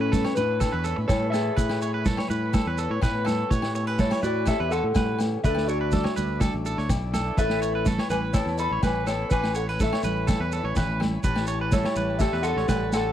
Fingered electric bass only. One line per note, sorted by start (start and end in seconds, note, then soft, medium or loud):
0.00 0.25 A2 medium
0.38 0.67 A2 medium
0.73 0.93 E2 medium
0.98 1.08 A2 medium
1.09 1.49 A2 medium
1.57 2.18 A2 medium
2.30 2.60 A2 medium
2.66 2.86 E2 medium
2.90 3.00 A2 medium
3.03 3.43 A2 loud
3.51 4.11 A2 medium
4.23 4.53 A2 medium
4.60 4.80 E2 medium
4.83 4.94 A2 medium
4.96 5.36 A2 medium
5.44 6.04 D2 medium
6.18 6.48 D2 medium
6.54 6.74 A1 medium
6.78 6.88 D2 medium
6.90 7.30 B1 medium
7.37 7.98 A1 medium
8.10 8.40 A1 medium
8.46 8.66 E2 medium
8.71 8.81 A1 medium
8.83 9.23 A1 medium
9.31 9.91 A1 medium
10.03 10.34 A1 medium
10.40 10.60 E2 medium
10.64 10.74 A1 medium
10.77 11.17 A1 medium
11.24 11.84 A1 medium
11.96 12.27 A1 medium
12.33 12.53 E2 medium
12.56 12.67 A1 medium
12.69 13.09 A1 medium